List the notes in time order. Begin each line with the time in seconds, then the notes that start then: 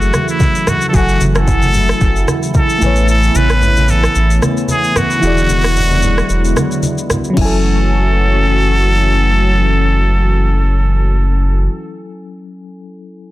Already playing: F#1 C#3 E3 F#3 A3 E4 F#4 G#4 A4 E5
0.02 shaker
0.14 cross-stick, high conga, shaker
0.28 E4, shaker
0.40 kick, high conga, shaker
0.55 shaker
0.67 F#4, cross-stick, high conga, low conga, shaker
0.81 shaker
0.89 F#3 F#4 A4
0.94 F#1 F#4 A4 G#5, kick, shaker
0.99 F#5
1.09 shaker
1.21 F#1, high conga, shaker
1.35 A4, cross-stick, shaker
1.48 kick, low conga, shaker
1.62 high conga, shaker
1.74 low conga, shaker
1.89 cross-stick, shaker
2.01 F#1, kick, shaker
2.16 shaker
2.28 cross-stick, high conga, shaker
2.43 shaker
2.54 A4, kick, high conga, shaker
2.70 shaker
2.78 A1 E3 A3 B3 E4 G#5, high conga, low conga, shaker
2.84 B4 C#5
2.96 shaker
3.08 A4, shaker
3.23 shaker
3.35 A1 B4, high conga, shaker
3.50 cross-stick, shaker
3.62 low conga, shaker
3.77 high conga, shaker
3.88 A4, low conga, shaker
4.04 cross-stick, shaker
4.15 A1, shaker
4.30 shaker
4.42 cross-stick, high conga, shaker
4.57 shaker
4.68 G#4, high conga, shaker
4.84 shaker
4.96 F#4, cross-stick, high conga, low conga, shaker
5.10 shaker
5.20 E1 D3 E3 F#3 G#3 E4 F#4, shaker
5.25 G#4 D5
5.37 shaker
5.49 E1, high conga, shaker
5.64 cross-stick, shaker
5.76 low conga, shaker
5.91 high conga, shaker
6.03 low conga, shaker
6.18 cross-stick, shaker
6.29 E1, shaker
6.45 shaker
6.57 cross-stick, high conga, shaker
6.71 shaker
6.82 high conga, shaker
6.98 shaker
7.10 cross-stick, high conga, low conga, shaker
7.24 shaker
7.30 F#3 C#4
7.37 F#1 E3 F#3 A3 C#4 E4 F#4 A4, kick, crash, high conga
7.41 A4 G#5